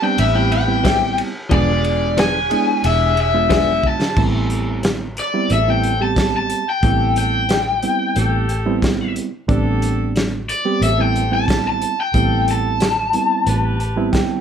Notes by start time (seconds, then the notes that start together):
0.02 G3 B3 C4 D4 G5
0.18 A1 C4 G4 B4 E5, ride
0.35 G3 B3 C4 E4 G5
0.52 G5, ride
0.67 G3 B3 C4 E4
0.84 E3 C4 E4 G4, kick, snare, ride
1.18 ride
1.50 E1 F3 G#3 B3 D4 F4 G#4 D5, kick, ride
1.84 ride
2.17 F3 B3 D4 G#4 G#5, snare, ride
2.50 G#3 B3 D4 E4 G#4, ride
2.82 E1 D4 G#4 E5, ride
3.17 E5, ride
3.34 G#3 B3 D4 F4
3.49 F3 B3 D4 G#4, kick, snare, ride
3.54 E5
3.83 kick
3.88 A5
4.02 snare
4.16 A1 G3 B3 C4 E4 G4 A4, kick, crash
4.50 closed hi-hat
4.83 snare, closed hi-hat
5.17 D5, closed hi-hat
5.34 G3 B3 C4 E4
5.50 A1 C4 G4 A4 E5, closed hi-hat
5.68 G3 B3 C4 E4 G5
5.84 closed hi-hat
6.00 G3 B3 C4 G4 A5
6.16 kick, snare, closed hi-hat
6.37 A5
6.50 closed hi-hat
6.70 G5
6.82 A1 G3 B3 C4 E4 G4 A4, kick, closed hi-hat
7.16 G5, closed hi-hat
7.49 snare, closed hi-hat
7.83 G3 B3 C4 E4, closed hi-hat
8.16 A1 G4 A4, closed hi-hat
8.49 closed hi-hat
8.66 G3 B3 C4 E4
8.82 kick, snare, closed hi-hat
9.16 closed hi-hat
9.48 A1 G3 B3 C4 D4 G4 A4, kick, closed hi-hat
9.82 closed hi-hat
10.16 snare, closed hi-hat
10.49 D5, closed hi-hat
10.65 G3 B3 C4 G4
10.81 A1 C4 G4 A4 E5, closed hi-hat
10.98 G3 B3 C4 E4 G5
11.16 closed hi-hat
11.31 G3 B3 C4 E4 A5
11.48 kick, snare, closed hi-hat
11.68 A5
11.82 closed hi-hat
12.01 G5
12.14 A1 G3 B3 C4 E4 G4 A4, kick, closed hi-hat
12.48 A5, closed hi-hat
12.80 snare, closed hi-hat
13.13 G3 B3 C4 E4, closed hi-hat
13.47 A1 G4 B4, closed hi-hat
13.80 A5, closed hi-hat
13.96 G3 B3 C4 E4
14.12 G5, kick, snare, closed hi-hat